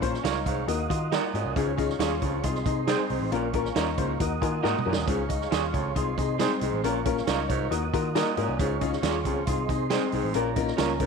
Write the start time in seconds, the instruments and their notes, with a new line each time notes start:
Already playing: picked electric bass A#1, tonewheel organ A#4 C#5 F5 C#6
0.01 upright piano A#3 C#4 F4 C5, clean electric guitar C#4, kick, closed hi-hat
0.14 snare
0.24 picked electric bass C#2, clean electric guitar C#4 D#4 F4 A#4 C#5, upright piano D#5, snare, closed hi-hat
0.46 picked electric bass C2, baritone saxophone G#2, upright piano G#4 F5, kick, closed hi-hat
0.68 picked electric bass D#2, upright piano A#3 D#4 F#4 A#4, tonewheel organ D#5 F#5 D#6, closed hi-hat
0.90 picked electric bass D#3, clean electric guitar F4, upright piano F#4 D#5, kick, closed hi-hat
1.12 baritone saxophone A#2, clean electric guitar D#4 F#4 A#4 D#5, upright piano A#4 F#5, snare, closed hi-hat
1.34 picked electric bass G#2, baritone saxophone A#2, clean electric guitar C#4, upright piano F#4 D#5, closed hi-hat
1.45 picked electric bass C2
1.56 picked electric bass C#2, baritone saxophone G#2, upright piano G#3 C#4 F4 G#4, clean electric guitar C#4, tonewheel organ G#4 C#5 F5 C#6, kick, closed hi-hat
1.77 upright piano G#3 C#4 F4 G#4, clean electric guitar D#4, kick, closed hi-hat
1.89 snare
1.99 picked electric bass D#2, upright piano G#3 C#4 F4 G#4, clean electric guitar C#4 F4 G#4 C#5, snare, closed hi-hat
2.21 picked electric bass C#2, baritone saxophone F2, upright piano G#3 C#4 F4 G#4, kick, closed hi-hat
2.43 picked electric bass C2, upright piano G#3 C4 D#4 G#4, clean electric guitar F4, tonewheel organ C5 D#5 C6, kick, closed hi-hat
2.55 snare
2.66 picked electric bass C3, upright piano G#3 C4 D#4 G#4, clean electric guitar D#4, kick, closed hi-hat
2.87 baritone saxophone G#2, upright piano G#3 C4 D#4 G#4, clean electric guitar C4 D#4 G#4 C5, snare, closed hi-hat
3.09 picked electric bass C2, baritone saxophone G#2, upright piano G#3 C4 D#4 G#4, open hi-hat
3.21 picked electric bass A1
3.31 picked electric bass A#1, baritone saxophone A#2, clean electric guitar A#3, upright piano A#3 C#4 F4 A#4, tonewheel organ A#4 C#5 F5 C#6, closed hi-hat
3.53 upright piano A#3 C#4 F4 A#4, clean electric guitar C#4, kick, closed hi-hat
3.65 snare
3.75 picked electric bass D#2, upright piano A#3 C#4 F4 A#4, clean electric guitar C#4 D#4 F4 A#4 C#5, snare, closed hi-hat
3.98 picked electric bass C#2, baritone saxophone G#2, upright piano A#3 C#4 F4 C5, kick, closed hi-hat
4.20 picked electric bass D#2, upright piano A#3 D#4 F#4 A#4, tonewheel organ D#5 F#5 D#6, kick, closed hi-hat
4.41 picked electric bass D#3, upright piano A#3 D#4 F#4 A#4 G#5, clean electric guitar F4, kick, closed hi-hat
4.63 picked electric bass G#2, baritone saxophone A#2, upright piano A#3 D#4 F#4 A#4 F#5, clean electric guitar D#4 F#4 A#4 D#5, snare
4.79 mid tom
4.85 picked electric bass F#2, baritone saxophone A#2, upright piano A#3 D#4 F#4 A#4, clean electric guitar C#4
4.93 snare
4.97 picked electric bass D#2
5.07 picked electric bass C#2, baritone saxophone G#2, upright piano G#3 C#4 F4 G#4, clean electric guitar C#4, tonewheel organ G#4 C#5 F5 C#6, kick, closed hi-hat
5.29 clean electric guitar D#4, upright piano D#5, kick, closed hi-hat
5.41 snare
5.51 picked electric bass D#2, clean electric guitar C#4 F4 G#4 C#5, upright piano G#4 F5, snare, closed hi-hat
5.74 picked electric bass C#2, baritone saxophone F2, upright piano F4 C#5, kick, closed hi-hat
5.95 picked electric bass C2, upright piano G#3 C4 D#4 G#4, clean electric guitar F4, tonewheel organ G#4 C5 D#5 C6, kick, closed hi-hat
6.18 picked electric bass C3, upright piano G#3 C4 D#4 G#4, clean electric guitar D#4, kick, closed hi-hat
6.39 baritone saxophone G#2, upright piano G#3 C4 D#4 G#4, clean electric guitar C4 D#4 G#4 C5, snare, closed hi-hat
6.61 picked electric bass C2, baritone saxophone G#2, upright piano G#3 C4 D#4 G#4, closed hi-hat
6.73 picked electric bass A1
6.83 picked electric bass A#1, baritone saxophone A#2, clean electric guitar A#3, upright piano A#3 C#4 F4 A#4, tonewheel organ A#4 C#5 F5 C#6, closed hi-hat
7.05 upright piano A#3 C#4 F4 A#4, clean electric guitar C#4, kick, closed hi-hat
7.17 snare
7.27 picked electric bass C#2, clean electric guitar C#4 D#4 F4 A#4 C#5, upright piano C#4 A#4, snare, closed hi-hat
7.49 picked electric bass C2, baritone saxophone G#2, upright piano F4 C#5, kick, closed hi-hat
7.71 picked electric bass D#2, upright piano A#3 D#4 F#4 A#4, tonewheel organ D#5 F#5 D#6, closed hi-hat
7.93 picked electric bass D#3, upright piano A#3 D#4 F#4 A#4 A#5, clean electric guitar F4, kick, closed hi-hat
8.15 baritone saxophone A#2, upright piano A#3 D#4 F#4 A#4 D#5, clean electric guitar D#4 F#4 A#4 D#5, snare, closed hi-hat
8.37 picked electric bass G#2, baritone saxophone A#2, upright piano A#3 D#4 F#4 A#4, clean electric guitar C#4, closed hi-hat
8.48 picked electric bass C2
8.59 picked electric bass C#2, baritone saxophone G#2, upright piano G#3 C#4 F4 G#4, clean electric guitar C#4, tonewheel organ G#4 C#5 F5 C#6, kick, closed hi-hat
8.81 upright piano G#3 C#4 F4 G#4, clean electric guitar D#4, kick, closed hi-hat
8.92 snare
9.02 picked electric bass D#2, upright piano G#3 C#4 F4 G#4, clean electric guitar C#4 F4 G#4 C#5, snare, closed hi-hat
9.25 picked electric bass C#2, baritone saxophone F2, upright piano G#3 C#4 F4 G#4, kick, closed hi-hat
9.47 picked electric bass C2, upright piano G#3 C4 D#4 G#4, clean electric guitar F4, tonewheel organ C5 D#5 C6, kick, closed hi-hat
9.69 picked electric bass C3, upright piano G#3 C4 D#4 G#4, clean electric guitar D#4, kick, closed hi-hat
9.90 baritone saxophone G#2, upright piano G#3 C4 D#4 G#4, clean electric guitar C4 D#4 G#4 C5, snare, closed hi-hat
10.12 picked electric bass C2, baritone saxophone G#2, upright piano G#3 C4 D#4 G#4, open hi-hat
10.24 picked electric bass A1
10.34 picked electric bass A#1, baritone saxophone A#2, clean electric guitar A#3, upright piano A#3 C#4 F4 A#4, tonewheel organ F4 A#4 C#5 A#5, closed hi-hat
10.56 upright piano A#3 C#4 F4 A#4, clean electric guitar D#4, kick, closed hi-hat
10.67 snare
10.77 picked electric bass C#2, upright piano A#3 C#4 F4 A#4, clean electric guitar C#4 F4 A#4 C#5, snare, closed hi-hat
11.00 picked electric bass C2, baritone saxophone G#2, upright piano A#3 C#4 F4 A#4, kick, closed hi-hat